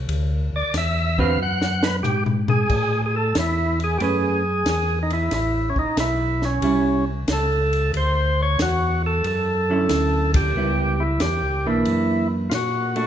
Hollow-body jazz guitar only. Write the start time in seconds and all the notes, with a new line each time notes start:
1.18 D3 C4 F#4 B4
4.00 A3 C#4 G#4 B4
6.63 G3 C#4 E4
9.70 D3 F#3 C#4 E4
10.56 G3 B3 E4
11.66 E3 A#3 D4
12.96 A3 D4 F#4